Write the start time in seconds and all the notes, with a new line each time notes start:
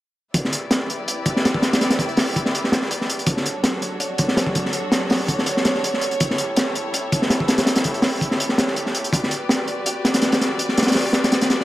0.34 E4 G4 B4 D5, kick, closed hi-hat
0.45 snare
0.53 closed hi-hat
0.71 snare, closed hi-hat
0.90 closed hi-hat
1.08 closed hi-hat
1.26 kick, closed hi-hat
1.36 snare
1.45 snare, closed hi-hat
1.54 kick
1.62 snare, closed hi-hat
1.73 snare, closed hi-hat
1.81 snare, closed hi-hat
1.90 snare, closed hi-hat
1.99 kick, closed hi-hat
2.09 closed hi-hat
2.17 snare, open hi-hat
2.36 kick, closed hi-hat
2.46 snare
2.55 closed hi-hat
2.64 snare
2.72 snare, closed hi-hat
2.82 snare
2.91 closed hi-hat
3.01 snare
3.10 closed hi-hat
3.19 closed hi-hat
3.26 F#3 D4 F#4 A4 C#5, kick, closed hi-hat
3.37 snare
3.46 closed hi-hat
3.64 snare, closed hi-hat
3.82 closed hi-hat
4.00 closed hi-hat
4.18 kick, closed hi-hat
4.28 snare
4.37 snare, closed hi-hat
4.47 kick
4.55 kick, closed hi-hat
4.66 snare
4.73 closed hi-hat
4.92 snare, closed hi-hat
5.10 snare, open hi-hat
5.28 kick, closed hi-hat
5.39 snare
5.46 closed hi-hat
5.57 snare
5.65 snare, closed hi-hat
5.75 snare
5.84 closed hi-hat
5.94 snare
6.01 closed hi-hat
6.11 closed hi-hat
6.20 E4 G4 A4, kick, closed hi-hat
6.31 snare
6.38 closed hi-hat
6.56 snare, closed hi-hat
6.75 closed hi-hat
6.94 closed hi-hat
7.12 kick, closed hi-hat
7.22 snare
7.30 snare, closed hi-hat
7.40 kick
7.48 snare, closed hi-hat
7.58 snare, closed hi-hat
7.66 snare, closed hi-hat
7.76 snare, closed hi-hat
7.84 kick, closed hi-hat
7.94 closed hi-hat
8.02 snare, open hi-hat
8.21 kick, closed hi-hat
8.31 snare
8.40 closed hi-hat
8.49 snare
8.58 snare, closed hi-hat
8.68 snare
8.76 closed hi-hat
8.86 snare
8.95 closed hi-hat
9.04 closed hi-hat
9.13 F#4 B4 D5, kick, closed hi-hat
9.23 snare
9.31 closed hi-hat
9.49 snare, closed hi-hat
9.68 closed hi-hat
9.86 closed hi-hat
10.05 snare, closed hi-hat
10.14 snare, closed hi-hat
10.22 snare, closed hi-hat
10.32 snare, closed hi-hat
10.41 snare, closed hi-hat
10.59 closed hi-hat
10.69 snare
10.77 snare, closed hi-hat
10.82 snare, closed hi-hat
10.87 snare, closed hi-hat
10.92 snare, closed hi-hat, open hi-hat
10.95 snare
11.13 snare, closed hi-hat
11.24 snare, closed hi-hat
11.32 snare, closed hi-hat
11.41 snare, closed hi-hat
11.50 snare, closed hi-hat
11.60 snare